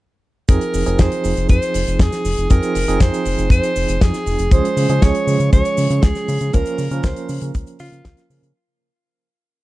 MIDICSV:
0, 0, Header, 1, 5, 480
1, 0, Start_track
1, 0, Key_signature, -4, "minor"
1, 0, Tempo, 504202
1, 464, Time_signature, 4, 2, 24, 8
1, 9171, End_track
2, 0, Start_track
2, 0, Title_t, "Alto saxophone"
2, 0, Program_c, 0, 65
2, 466, Note_on_c, 0, 70, 100
2, 946, Note_on_c, 0, 72, 102
2, 960, Note_off_c, 0, 70, 0
2, 1420, Note_off_c, 0, 72, 0
2, 1426, Note_on_c, 0, 72, 107
2, 1906, Note_on_c, 0, 68, 94
2, 1920, Note_off_c, 0, 72, 0
2, 2384, Note_on_c, 0, 70, 102
2, 2399, Note_off_c, 0, 68, 0
2, 2865, Note_on_c, 0, 72, 104
2, 2879, Note_off_c, 0, 70, 0
2, 3338, Note_off_c, 0, 72, 0
2, 3344, Note_on_c, 0, 72, 111
2, 3824, Note_on_c, 0, 68, 100
2, 3839, Note_off_c, 0, 72, 0
2, 4303, Note_on_c, 0, 72, 118
2, 4317, Note_off_c, 0, 68, 0
2, 4782, Note_on_c, 0, 73, 117
2, 4796, Note_off_c, 0, 72, 0
2, 5256, Note_off_c, 0, 73, 0
2, 5261, Note_on_c, 0, 73, 121
2, 5742, Note_on_c, 0, 68, 101
2, 5756, Note_off_c, 0, 73, 0
2, 6222, Note_on_c, 0, 70, 110
2, 6236, Note_off_c, 0, 68, 0
2, 6702, Note_on_c, 0, 72, 99
2, 6716, Note_off_c, 0, 70, 0
2, 7063, Note_off_c, 0, 72, 0
2, 7422, Note_on_c, 0, 65, 122
2, 7869, Note_off_c, 0, 65, 0
2, 9171, End_track
3, 0, Start_track
3, 0, Title_t, "Tine electric piano"
3, 0, Program_c, 1, 4
3, 462, Note_on_c, 1, 53, 92
3, 462, Note_on_c, 1, 60, 85
3, 462, Note_on_c, 1, 63, 85
3, 462, Note_on_c, 1, 68, 105
3, 794, Note_off_c, 1, 53, 0
3, 794, Note_off_c, 1, 60, 0
3, 794, Note_off_c, 1, 63, 0
3, 794, Note_off_c, 1, 68, 0
3, 822, Note_on_c, 1, 53, 88
3, 822, Note_on_c, 1, 60, 81
3, 822, Note_on_c, 1, 63, 83
3, 822, Note_on_c, 1, 68, 97
3, 2354, Note_off_c, 1, 53, 0
3, 2354, Note_off_c, 1, 60, 0
3, 2354, Note_off_c, 1, 63, 0
3, 2354, Note_off_c, 1, 68, 0
3, 2383, Note_on_c, 1, 53, 89
3, 2383, Note_on_c, 1, 60, 88
3, 2383, Note_on_c, 1, 63, 82
3, 2383, Note_on_c, 1, 68, 103
3, 2714, Note_off_c, 1, 53, 0
3, 2714, Note_off_c, 1, 63, 0
3, 2714, Note_off_c, 1, 68, 0
3, 2715, Note_off_c, 1, 60, 0
3, 2741, Note_on_c, 1, 60, 82
3, 2741, Note_on_c, 1, 63, 83
3, 2742, Note_on_c, 1, 53, 90
3, 2742, Note_on_c, 1, 68, 103
3, 4274, Note_off_c, 1, 53, 0
3, 4274, Note_off_c, 1, 60, 0
3, 4274, Note_off_c, 1, 63, 0
3, 4274, Note_off_c, 1, 68, 0
3, 4302, Note_on_c, 1, 68, 107
3, 4303, Note_on_c, 1, 53, 93
3, 4303, Note_on_c, 1, 56, 86
3, 4303, Note_on_c, 1, 61, 86
3, 4634, Note_off_c, 1, 53, 0
3, 4634, Note_off_c, 1, 56, 0
3, 4634, Note_off_c, 1, 61, 0
3, 4634, Note_off_c, 1, 68, 0
3, 4662, Note_on_c, 1, 61, 82
3, 4663, Note_on_c, 1, 53, 89
3, 4663, Note_on_c, 1, 56, 80
3, 4663, Note_on_c, 1, 68, 100
3, 6194, Note_off_c, 1, 53, 0
3, 6194, Note_off_c, 1, 56, 0
3, 6194, Note_off_c, 1, 61, 0
3, 6194, Note_off_c, 1, 68, 0
3, 6222, Note_on_c, 1, 53, 95
3, 6222, Note_on_c, 1, 58, 91
3, 6222, Note_on_c, 1, 61, 86
3, 6222, Note_on_c, 1, 70, 105
3, 6554, Note_off_c, 1, 53, 0
3, 6554, Note_off_c, 1, 58, 0
3, 6554, Note_off_c, 1, 61, 0
3, 6554, Note_off_c, 1, 70, 0
3, 6582, Note_on_c, 1, 53, 87
3, 6582, Note_on_c, 1, 58, 82
3, 6582, Note_on_c, 1, 61, 84
3, 6582, Note_on_c, 1, 70, 101
3, 7879, Note_off_c, 1, 53, 0
3, 7879, Note_off_c, 1, 58, 0
3, 7879, Note_off_c, 1, 61, 0
3, 7879, Note_off_c, 1, 70, 0
3, 7903, Note_on_c, 1, 53, 81
3, 7903, Note_on_c, 1, 58, 71
3, 7903, Note_on_c, 1, 61, 71
3, 7903, Note_on_c, 1, 70, 85
3, 8114, Note_off_c, 1, 53, 0
3, 8114, Note_off_c, 1, 58, 0
3, 8114, Note_off_c, 1, 70, 0
3, 8115, Note_off_c, 1, 61, 0
3, 9171, End_track
4, 0, Start_track
4, 0, Title_t, "Analog synth bass"
4, 0, Program_c, 2, 38
4, 464, Note_on_c, 2, 41, 101
4, 558, Note_off_c, 2, 41, 0
4, 705, Note_on_c, 2, 29, 90
4, 798, Note_off_c, 2, 29, 0
4, 825, Note_on_c, 2, 29, 99
4, 918, Note_off_c, 2, 29, 0
4, 943, Note_on_c, 2, 41, 91
4, 1037, Note_off_c, 2, 41, 0
4, 1184, Note_on_c, 2, 29, 91
4, 1277, Note_off_c, 2, 29, 0
4, 1303, Note_on_c, 2, 29, 106
4, 1397, Note_off_c, 2, 29, 0
4, 1423, Note_on_c, 2, 41, 106
4, 1517, Note_off_c, 2, 41, 0
4, 1663, Note_on_c, 2, 29, 89
4, 1757, Note_off_c, 2, 29, 0
4, 1783, Note_on_c, 2, 29, 94
4, 1877, Note_off_c, 2, 29, 0
4, 1899, Note_on_c, 2, 41, 87
4, 1995, Note_off_c, 2, 41, 0
4, 2142, Note_on_c, 2, 29, 97
4, 2236, Note_off_c, 2, 29, 0
4, 2262, Note_on_c, 2, 29, 85
4, 2356, Note_off_c, 2, 29, 0
4, 2386, Note_on_c, 2, 41, 99
4, 2478, Note_off_c, 2, 41, 0
4, 2621, Note_on_c, 2, 29, 85
4, 2716, Note_off_c, 2, 29, 0
4, 2742, Note_on_c, 2, 29, 100
4, 2837, Note_off_c, 2, 29, 0
4, 2860, Note_on_c, 2, 41, 93
4, 2955, Note_off_c, 2, 41, 0
4, 3102, Note_on_c, 2, 29, 94
4, 3196, Note_off_c, 2, 29, 0
4, 3221, Note_on_c, 2, 29, 109
4, 3316, Note_off_c, 2, 29, 0
4, 3333, Note_on_c, 2, 41, 97
4, 3432, Note_off_c, 2, 41, 0
4, 3581, Note_on_c, 2, 29, 85
4, 3676, Note_off_c, 2, 29, 0
4, 3702, Note_on_c, 2, 29, 98
4, 3796, Note_off_c, 2, 29, 0
4, 3823, Note_on_c, 2, 41, 83
4, 3917, Note_off_c, 2, 41, 0
4, 4059, Note_on_c, 2, 29, 100
4, 4155, Note_off_c, 2, 29, 0
4, 4180, Note_on_c, 2, 29, 89
4, 4276, Note_off_c, 2, 29, 0
4, 4298, Note_on_c, 2, 37, 97
4, 4395, Note_off_c, 2, 37, 0
4, 4539, Note_on_c, 2, 49, 89
4, 4635, Note_off_c, 2, 49, 0
4, 4660, Note_on_c, 2, 49, 102
4, 4755, Note_off_c, 2, 49, 0
4, 4783, Note_on_c, 2, 37, 93
4, 4877, Note_off_c, 2, 37, 0
4, 5019, Note_on_c, 2, 49, 91
4, 5115, Note_off_c, 2, 49, 0
4, 5139, Note_on_c, 2, 49, 104
4, 5235, Note_off_c, 2, 49, 0
4, 5262, Note_on_c, 2, 37, 100
4, 5357, Note_off_c, 2, 37, 0
4, 5500, Note_on_c, 2, 49, 80
4, 5595, Note_off_c, 2, 49, 0
4, 5621, Note_on_c, 2, 49, 100
4, 5716, Note_off_c, 2, 49, 0
4, 5739, Note_on_c, 2, 37, 90
4, 5835, Note_off_c, 2, 37, 0
4, 5982, Note_on_c, 2, 49, 102
4, 6076, Note_off_c, 2, 49, 0
4, 6101, Note_on_c, 2, 49, 86
4, 6196, Note_off_c, 2, 49, 0
4, 6228, Note_on_c, 2, 37, 102
4, 6320, Note_off_c, 2, 37, 0
4, 6459, Note_on_c, 2, 49, 90
4, 6555, Note_off_c, 2, 49, 0
4, 6580, Note_on_c, 2, 49, 103
4, 6675, Note_off_c, 2, 49, 0
4, 6700, Note_on_c, 2, 37, 94
4, 6795, Note_off_c, 2, 37, 0
4, 6941, Note_on_c, 2, 49, 94
4, 7036, Note_off_c, 2, 49, 0
4, 7062, Note_on_c, 2, 49, 104
4, 7156, Note_off_c, 2, 49, 0
4, 7185, Note_on_c, 2, 37, 85
4, 7278, Note_off_c, 2, 37, 0
4, 7424, Note_on_c, 2, 49, 88
4, 7517, Note_off_c, 2, 49, 0
4, 7541, Note_on_c, 2, 49, 80
4, 7636, Note_off_c, 2, 49, 0
4, 7664, Note_on_c, 2, 37, 96
4, 7758, Note_off_c, 2, 37, 0
4, 7901, Note_on_c, 2, 49, 82
4, 7996, Note_off_c, 2, 49, 0
4, 8021, Note_on_c, 2, 49, 101
4, 8116, Note_off_c, 2, 49, 0
4, 9171, End_track
5, 0, Start_track
5, 0, Title_t, "Drums"
5, 461, Note_on_c, 9, 69, 58
5, 464, Note_on_c, 9, 36, 127
5, 471, Note_on_c, 9, 42, 87
5, 556, Note_off_c, 9, 69, 0
5, 559, Note_off_c, 9, 36, 0
5, 566, Note_off_c, 9, 42, 0
5, 582, Note_on_c, 9, 42, 55
5, 677, Note_off_c, 9, 42, 0
5, 702, Note_on_c, 9, 46, 106
5, 705, Note_on_c, 9, 69, 88
5, 797, Note_off_c, 9, 46, 0
5, 800, Note_off_c, 9, 69, 0
5, 821, Note_on_c, 9, 42, 56
5, 825, Note_on_c, 9, 69, 42
5, 917, Note_off_c, 9, 42, 0
5, 920, Note_off_c, 9, 69, 0
5, 939, Note_on_c, 9, 42, 78
5, 940, Note_on_c, 9, 69, 54
5, 943, Note_on_c, 9, 36, 119
5, 945, Note_on_c, 9, 38, 125
5, 1035, Note_off_c, 9, 42, 0
5, 1035, Note_off_c, 9, 69, 0
5, 1039, Note_off_c, 9, 36, 0
5, 1040, Note_off_c, 9, 38, 0
5, 1063, Note_on_c, 9, 42, 59
5, 1159, Note_off_c, 9, 42, 0
5, 1179, Note_on_c, 9, 46, 100
5, 1187, Note_on_c, 9, 69, 77
5, 1274, Note_off_c, 9, 46, 0
5, 1283, Note_off_c, 9, 69, 0
5, 1302, Note_on_c, 9, 69, 48
5, 1306, Note_on_c, 9, 42, 61
5, 1397, Note_off_c, 9, 69, 0
5, 1402, Note_off_c, 9, 42, 0
5, 1416, Note_on_c, 9, 69, 50
5, 1423, Note_on_c, 9, 36, 121
5, 1426, Note_on_c, 9, 42, 71
5, 1511, Note_off_c, 9, 69, 0
5, 1518, Note_off_c, 9, 36, 0
5, 1522, Note_off_c, 9, 42, 0
5, 1545, Note_on_c, 9, 69, 48
5, 1546, Note_on_c, 9, 42, 59
5, 1640, Note_off_c, 9, 69, 0
5, 1641, Note_off_c, 9, 42, 0
5, 1658, Note_on_c, 9, 46, 105
5, 1668, Note_on_c, 9, 69, 84
5, 1753, Note_off_c, 9, 46, 0
5, 1763, Note_off_c, 9, 69, 0
5, 1783, Note_on_c, 9, 42, 55
5, 1789, Note_on_c, 9, 69, 44
5, 1878, Note_off_c, 9, 42, 0
5, 1884, Note_off_c, 9, 69, 0
5, 1898, Note_on_c, 9, 69, 58
5, 1899, Note_on_c, 9, 36, 121
5, 1902, Note_on_c, 9, 38, 113
5, 1908, Note_on_c, 9, 42, 79
5, 1993, Note_off_c, 9, 69, 0
5, 1994, Note_off_c, 9, 36, 0
5, 1997, Note_off_c, 9, 38, 0
5, 2004, Note_off_c, 9, 42, 0
5, 2021, Note_on_c, 9, 69, 44
5, 2024, Note_on_c, 9, 38, 40
5, 2026, Note_on_c, 9, 42, 54
5, 2117, Note_off_c, 9, 69, 0
5, 2119, Note_off_c, 9, 38, 0
5, 2121, Note_off_c, 9, 42, 0
5, 2142, Note_on_c, 9, 69, 78
5, 2149, Note_on_c, 9, 46, 102
5, 2237, Note_off_c, 9, 69, 0
5, 2244, Note_off_c, 9, 46, 0
5, 2260, Note_on_c, 9, 69, 44
5, 2263, Note_on_c, 9, 42, 53
5, 2355, Note_off_c, 9, 69, 0
5, 2358, Note_off_c, 9, 42, 0
5, 2380, Note_on_c, 9, 42, 81
5, 2383, Note_on_c, 9, 69, 57
5, 2386, Note_on_c, 9, 36, 115
5, 2475, Note_off_c, 9, 42, 0
5, 2478, Note_off_c, 9, 69, 0
5, 2481, Note_off_c, 9, 36, 0
5, 2500, Note_on_c, 9, 42, 51
5, 2506, Note_on_c, 9, 69, 47
5, 2595, Note_off_c, 9, 42, 0
5, 2601, Note_off_c, 9, 69, 0
5, 2620, Note_on_c, 9, 46, 116
5, 2628, Note_on_c, 9, 69, 77
5, 2715, Note_off_c, 9, 46, 0
5, 2723, Note_off_c, 9, 69, 0
5, 2747, Note_on_c, 9, 69, 44
5, 2749, Note_on_c, 9, 42, 51
5, 2842, Note_off_c, 9, 69, 0
5, 2844, Note_off_c, 9, 42, 0
5, 2858, Note_on_c, 9, 42, 85
5, 2861, Note_on_c, 9, 36, 127
5, 2863, Note_on_c, 9, 38, 113
5, 2865, Note_on_c, 9, 69, 59
5, 2954, Note_off_c, 9, 42, 0
5, 2956, Note_off_c, 9, 36, 0
5, 2958, Note_off_c, 9, 38, 0
5, 2960, Note_off_c, 9, 69, 0
5, 2986, Note_on_c, 9, 42, 57
5, 2990, Note_on_c, 9, 69, 49
5, 3081, Note_off_c, 9, 42, 0
5, 3085, Note_off_c, 9, 69, 0
5, 3097, Note_on_c, 9, 46, 99
5, 3102, Note_on_c, 9, 69, 75
5, 3192, Note_off_c, 9, 46, 0
5, 3197, Note_off_c, 9, 69, 0
5, 3223, Note_on_c, 9, 42, 54
5, 3223, Note_on_c, 9, 69, 47
5, 3318, Note_off_c, 9, 42, 0
5, 3318, Note_off_c, 9, 69, 0
5, 3333, Note_on_c, 9, 36, 123
5, 3344, Note_on_c, 9, 69, 50
5, 3346, Note_on_c, 9, 42, 78
5, 3428, Note_off_c, 9, 36, 0
5, 3439, Note_off_c, 9, 69, 0
5, 3442, Note_off_c, 9, 42, 0
5, 3461, Note_on_c, 9, 42, 56
5, 3461, Note_on_c, 9, 69, 47
5, 3556, Note_off_c, 9, 42, 0
5, 3557, Note_off_c, 9, 69, 0
5, 3580, Note_on_c, 9, 69, 76
5, 3584, Note_on_c, 9, 46, 100
5, 3675, Note_off_c, 9, 69, 0
5, 3679, Note_off_c, 9, 46, 0
5, 3698, Note_on_c, 9, 42, 62
5, 3700, Note_on_c, 9, 69, 46
5, 3793, Note_off_c, 9, 42, 0
5, 3796, Note_off_c, 9, 69, 0
5, 3821, Note_on_c, 9, 38, 111
5, 3823, Note_on_c, 9, 36, 124
5, 3826, Note_on_c, 9, 42, 75
5, 3828, Note_on_c, 9, 69, 57
5, 3916, Note_off_c, 9, 38, 0
5, 3918, Note_off_c, 9, 36, 0
5, 3921, Note_off_c, 9, 42, 0
5, 3923, Note_off_c, 9, 69, 0
5, 3941, Note_on_c, 9, 38, 38
5, 3942, Note_on_c, 9, 69, 49
5, 3944, Note_on_c, 9, 42, 52
5, 4036, Note_off_c, 9, 38, 0
5, 4037, Note_off_c, 9, 69, 0
5, 4039, Note_off_c, 9, 42, 0
5, 4058, Note_on_c, 9, 46, 91
5, 4064, Note_on_c, 9, 69, 74
5, 4153, Note_off_c, 9, 46, 0
5, 4160, Note_off_c, 9, 69, 0
5, 4176, Note_on_c, 9, 69, 47
5, 4183, Note_on_c, 9, 42, 57
5, 4271, Note_off_c, 9, 69, 0
5, 4278, Note_off_c, 9, 42, 0
5, 4298, Note_on_c, 9, 36, 127
5, 4300, Note_on_c, 9, 69, 53
5, 4302, Note_on_c, 9, 42, 73
5, 4393, Note_off_c, 9, 36, 0
5, 4395, Note_off_c, 9, 69, 0
5, 4397, Note_off_c, 9, 42, 0
5, 4427, Note_on_c, 9, 42, 57
5, 4523, Note_off_c, 9, 42, 0
5, 4543, Note_on_c, 9, 69, 72
5, 4545, Note_on_c, 9, 46, 108
5, 4638, Note_off_c, 9, 69, 0
5, 4640, Note_off_c, 9, 46, 0
5, 4656, Note_on_c, 9, 42, 56
5, 4662, Note_on_c, 9, 69, 41
5, 4751, Note_off_c, 9, 42, 0
5, 4758, Note_off_c, 9, 69, 0
5, 4781, Note_on_c, 9, 38, 115
5, 4781, Note_on_c, 9, 42, 77
5, 4782, Note_on_c, 9, 69, 58
5, 4783, Note_on_c, 9, 36, 127
5, 4876, Note_off_c, 9, 38, 0
5, 4876, Note_off_c, 9, 42, 0
5, 4877, Note_off_c, 9, 69, 0
5, 4878, Note_off_c, 9, 36, 0
5, 4900, Note_on_c, 9, 42, 63
5, 4996, Note_off_c, 9, 42, 0
5, 5025, Note_on_c, 9, 69, 76
5, 5028, Note_on_c, 9, 46, 93
5, 5120, Note_off_c, 9, 69, 0
5, 5123, Note_off_c, 9, 46, 0
5, 5142, Note_on_c, 9, 69, 46
5, 5145, Note_on_c, 9, 42, 56
5, 5237, Note_off_c, 9, 69, 0
5, 5241, Note_off_c, 9, 42, 0
5, 5262, Note_on_c, 9, 36, 122
5, 5264, Note_on_c, 9, 69, 56
5, 5266, Note_on_c, 9, 42, 73
5, 5358, Note_off_c, 9, 36, 0
5, 5359, Note_off_c, 9, 69, 0
5, 5362, Note_off_c, 9, 42, 0
5, 5380, Note_on_c, 9, 42, 57
5, 5382, Note_on_c, 9, 69, 48
5, 5475, Note_off_c, 9, 42, 0
5, 5477, Note_off_c, 9, 69, 0
5, 5497, Note_on_c, 9, 69, 82
5, 5500, Note_on_c, 9, 46, 110
5, 5592, Note_off_c, 9, 69, 0
5, 5595, Note_off_c, 9, 46, 0
5, 5620, Note_on_c, 9, 69, 48
5, 5624, Note_on_c, 9, 42, 53
5, 5715, Note_off_c, 9, 69, 0
5, 5720, Note_off_c, 9, 42, 0
5, 5735, Note_on_c, 9, 42, 75
5, 5738, Note_on_c, 9, 38, 121
5, 5739, Note_on_c, 9, 36, 127
5, 5743, Note_on_c, 9, 69, 55
5, 5830, Note_off_c, 9, 42, 0
5, 5833, Note_off_c, 9, 38, 0
5, 5834, Note_off_c, 9, 36, 0
5, 5838, Note_off_c, 9, 69, 0
5, 5857, Note_on_c, 9, 69, 45
5, 5860, Note_on_c, 9, 38, 36
5, 5871, Note_on_c, 9, 42, 50
5, 5952, Note_off_c, 9, 69, 0
5, 5956, Note_off_c, 9, 38, 0
5, 5966, Note_off_c, 9, 42, 0
5, 5981, Note_on_c, 9, 46, 100
5, 5984, Note_on_c, 9, 69, 79
5, 6076, Note_off_c, 9, 46, 0
5, 6080, Note_off_c, 9, 69, 0
5, 6100, Note_on_c, 9, 42, 58
5, 6100, Note_on_c, 9, 69, 46
5, 6195, Note_off_c, 9, 69, 0
5, 6196, Note_off_c, 9, 42, 0
5, 6220, Note_on_c, 9, 42, 74
5, 6223, Note_on_c, 9, 69, 58
5, 6228, Note_on_c, 9, 36, 116
5, 6315, Note_off_c, 9, 42, 0
5, 6318, Note_off_c, 9, 69, 0
5, 6323, Note_off_c, 9, 36, 0
5, 6337, Note_on_c, 9, 69, 51
5, 6348, Note_on_c, 9, 42, 61
5, 6432, Note_off_c, 9, 69, 0
5, 6444, Note_off_c, 9, 42, 0
5, 6457, Note_on_c, 9, 69, 82
5, 6465, Note_on_c, 9, 46, 94
5, 6553, Note_off_c, 9, 69, 0
5, 6561, Note_off_c, 9, 46, 0
5, 6581, Note_on_c, 9, 42, 61
5, 6581, Note_on_c, 9, 69, 43
5, 6676, Note_off_c, 9, 42, 0
5, 6676, Note_off_c, 9, 69, 0
5, 6694, Note_on_c, 9, 42, 84
5, 6700, Note_on_c, 9, 36, 115
5, 6702, Note_on_c, 9, 69, 53
5, 6705, Note_on_c, 9, 38, 113
5, 6790, Note_off_c, 9, 42, 0
5, 6795, Note_off_c, 9, 36, 0
5, 6797, Note_off_c, 9, 69, 0
5, 6800, Note_off_c, 9, 38, 0
5, 6820, Note_on_c, 9, 42, 59
5, 6828, Note_on_c, 9, 69, 44
5, 6915, Note_off_c, 9, 42, 0
5, 6923, Note_off_c, 9, 69, 0
5, 6939, Note_on_c, 9, 69, 84
5, 6946, Note_on_c, 9, 46, 102
5, 7034, Note_off_c, 9, 69, 0
5, 7041, Note_off_c, 9, 46, 0
5, 7057, Note_on_c, 9, 42, 64
5, 7068, Note_on_c, 9, 69, 49
5, 7153, Note_off_c, 9, 42, 0
5, 7163, Note_off_c, 9, 69, 0
5, 7181, Note_on_c, 9, 69, 58
5, 7186, Note_on_c, 9, 36, 118
5, 7187, Note_on_c, 9, 42, 66
5, 7277, Note_off_c, 9, 69, 0
5, 7281, Note_off_c, 9, 36, 0
5, 7282, Note_off_c, 9, 42, 0
5, 7299, Note_on_c, 9, 69, 45
5, 7304, Note_on_c, 9, 42, 57
5, 7394, Note_off_c, 9, 69, 0
5, 7400, Note_off_c, 9, 42, 0
5, 7417, Note_on_c, 9, 46, 107
5, 7421, Note_on_c, 9, 69, 80
5, 7512, Note_off_c, 9, 46, 0
5, 7517, Note_off_c, 9, 69, 0
5, 7547, Note_on_c, 9, 69, 47
5, 7642, Note_off_c, 9, 69, 0
5, 7661, Note_on_c, 9, 38, 122
5, 7664, Note_on_c, 9, 36, 113
5, 7665, Note_on_c, 9, 42, 72
5, 7668, Note_on_c, 9, 69, 54
5, 7756, Note_off_c, 9, 38, 0
5, 7759, Note_off_c, 9, 36, 0
5, 7761, Note_off_c, 9, 42, 0
5, 7763, Note_off_c, 9, 69, 0
5, 7779, Note_on_c, 9, 42, 50
5, 7786, Note_on_c, 9, 69, 45
5, 7792, Note_on_c, 9, 38, 37
5, 7874, Note_off_c, 9, 42, 0
5, 7882, Note_off_c, 9, 69, 0
5, 7887, Note_off_c, 9, 38, 0
5, 7906, Note_on_c, 9, 46, 93
5, 7907, Note_on_c, 9, 69, 76
5, 8002, Note_off_c, 9, 46, 0
5, 8003, Note_off_c, 9, 69, 0
5, 8027, Note_on_c, 9, 42, 53
5, 8031, Note_on_c, 9, 69, 52
5, 8122, Note_off_c, 9, 42, 0
5, 8126, Note_off_c, 9, 69, 0
5, 9171, End_track
0, 0, End_of_file